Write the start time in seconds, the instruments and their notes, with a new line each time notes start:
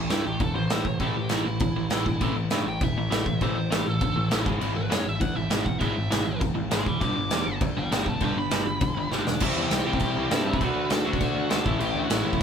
0.10 picked electric bass G2, overdriven electric guitar A2 E3 A3, lead electric guitar E4, snare, crash
0.24 picked electric bass A1, overdriven electric guitar A2 E3, lead electric guitar G4
0.40 picked electric bass E1, overdriven electric guitar A2 E3, lead electric guitar A4, kick, crash
0.55 picked electric bass A1, overdriven electric guitar A2 E3, lead electric guitar C5
0.70 picked electric bass A1, overdriven electric guitar A2 E3 A3, snare, crash
0.85 picked electric bass A1, overdriven electric guitar A2 E3, kick
1.00 picked electric bass A1, overdriven electric guitar A2 E3 A3, lead electric guitar A4, kick, crash
1.15 picked electric bass A1, overdriven electric guitar A2 E3, lead electric guitar G4
1.29 picked electric bass A1, overdriven electric guitar A2 E3 A3, lead electric guitar E4, snare, crash
1.45 picked electric bass A1, overdriven electric guitar A2 E3, lead electric guitar E4
1.60 picked electric bass G1, overdriven electric guitar A2 E3, kick, crash
1.76 picked electric bass A1, overdriven electric guitar A2 E3
1.90 picked electric bass A1, overdriven electric guitar A2 E3 A3, snare, crash
2.06 picked electric bass G1, overdriven electric guitar A2 E3, kick
2.21 picked electric bass A1, overdriven electric guitar A2 E3 A3, kick, crash
2.36 picked electric bass A1, overdriven electric guitar A2 E3
2.50 picked electric bass G2, overdriven electric guitar A2 E3 A3, snare, crash
2.66 picked electric bass A1, overdriven electric guitar A2 E3, lead electric guitar G5
2.81 picked electric bass E1, overdriven electric guitar A2 E3, lead electric guitar E5, kick, crash
2.96 picked electric bass A1, overdriven electric guitar A2 E3
3.10 picked electric bass A1, overdriven electric guitar A2 E3 A3, snare, crash
3.26 picked electric bass A1, overdriven electric guitar A2 E3, kick
3.41 picked electric bass A1, overdriven electric guitar A2 E3 A3, lead electric guitar C5, kick, crash
3.55 picked electric bass A1, overdriven electric guitar A2 E3, lead electric guitar C5
3.70 picked electric bass A1, overdriven electric guitar A2 E3 A3, lead electric guitar G4, snare, crash
3.86 picked electric bass A1, overdriven electric guitar A2 E3, lead electric guitar A4
4.01 picked electric bass G1, overdriven electric guitar A2 E3, kick, crash
4.16 picked electric bass A1, overdriven electric guitar A2 E3
4.31 picked electric bass A1, overdriven electric guitar A2 E3 A3, snare, crash
4.45 picked electric bass G#1, overdriven electric guitar G#2 E3 G#3, kick
4.61 picked electric bass G#1, overdriven electric guitar G#2 E3 G#3, crash
4.75 picked electric bass G#1, overdriven electric guitar G#2 E3, lead electric guitar B4
4.90 picked electric bass F#2, overdriven electric guitar G#2 E3 G#3, lead electric guitar C#5, snare, crash
5.05 picked electric bass G#1, overdriven electric guitar G#2 E3, lead electric guitar E5
5.20 picked electric bass D2, overdriven electric guitar G#2 E3, lead electric guitar F#5, kick, crash
5.36 picked electric bass G#1, overdriven electric guitar G#2 E3, lead electric guitar E5
5.50 picked electric bass G#1, overdriven electric guitar G#2 E3 G#3, snare, crash
5.65 picked electric bass G#1, overdriven electric guitar G#2 E3, lead electric guitar F#5, kick
5.80 picked electric bass G#1, overdriven electric guitar G#2 E3 G#3, lead electric guitar E5, kick, crash
5.95 picked electric bass G#1, overdriven electric guitar G#2 E3
6.10 picked electric bass G#1, overdriven electric guitar G#2 E3 G#3, snare, crash
6.26 picked electric bass G#1, overdriven electric guitar G#2 E3
6.40 picked electric bass F#1, overdriven electric guitar G#2 E3, kick, crash
6.55 picked electric bass G#1, overdriven electric guitar G#2 E3
6.71 picked electric bass G#1, overdriven electric guitar G#2 E3 G#3, lead electric guitar G#5 C6, snare, crash
6.86 picked electric bass F#1, overdriven electric guitar G#2 E3, lead electric guitar B5 D6, kick
7.01 picked electric bass G1, overdriven electric guitar G2 D3 G3, lead electric guitar D6, kick, crash
7.16 picked electric bass G1, overdriven electric guitar G2 D3
7.30 picked electric bass E2, overdriven electric guitar G2 D3 G3, snare, crash
7.46 picked electric bass G1, overdriven electric guitar G2 D3
7.61 picked electric bass D2, overdriven electric guitar G2 D3, kick, crash
7.77 picked electric bass G1, overdriven electric guitar G2 D3, lead electric guitar D5 G5
7.91 picked electric bass G1, overdriven electric guitar G2 D3 G3, lead electric guitar D5 G5, snare, crash
8.06 picked electric bass G1, overdriven electric guitar G2 D3, lead electric guitar E5 A5, kick
8.20 picked electric bass G1, overdriven electric guitar G2 D3 G3, lead electric guitar E5 A5, kick, crash
8.36 picked electric bass G1, overdriven electric guitar G2 D3, lead electric guitar B5
8.50 picked electric bass G1, overdriven electric guitar G2 D3 G3, snare, crash
8.65 picked electric bass G1, overdriven electric guitar G2 D3
8.81 picked electric bass E1, overdriven electric guitar G2 D3, kick, crash
8.95 picked electric bass G1, overdriven electric guitar G2 D3
9.10 picked electric bass G1, overdriven electric guitar G2 D3 G3, lead electric guitar D4 D5, snare
9.25 picked electric bass E1, overdriven electric guitar G2 D3, snare
9.40 picked electric bass C2, overdriven electric guitar C3 E3 G3 C4 E4, lead electric guitar E4 E5, kick, crash
9.56 picked electric bass E2
9.62 lead electric guitar G4 G5
9.71 picked electric bass C2, snare, crash
9.84 picked electric bass C2, overdriven electric guitar E3 G3 C4 E4, lead electric guitar G4 G5
9.89 overdriven electric guitar C3
9.93 kick
10.00 picked electric bass C2, kick, crash
10.16 picked electric bass C2
10.30 picked electric bass G2, overdriven electric guitar C3 E3 G3 C4 E4, lead electric guitar A4 A5, snare, crash
10.45 picked electric bass G2, lead electric guitar B4 B5
10.53 kick
10.60 picked electric bass D2, overdriven electric guitar D3 A3 D4 F#4, kick, crash
10.76 picked electric bass D2
10.90 picked electric bass D2, lead electric guitar A4 A5, snare, crash
11.05 picked electric bass D2, overdriven electric guitar D3 A3 D4 F#4, lead electric guitar F#4 F#5
11.13 kick
11.20 picked electric bass D2, kick, crash
11.35 picked electric bass D2
11.50 picked electric bass D2, overdriven electric guitar D3 A3 D4 F#4, lead electric guitar A4 A5, snare, crash
11.64 picked electric bass A1, overdriven electric guitar A2 E3 A3 C#4 E4, kick
11.80 picked electric bass A1, lead electric guitar G4 G5, crash
11.95 picked electric bass D2
12.03 lead electric guitar F#4 F#5
12.09 picked electric bass A1, overdriven electric guitar A2 E3 A3 C#4 E4, snare, crash
12.24 picked electric bass A1, lead electric guitar E4 E5
12.33 kick
12.39 lead electric guitar C#4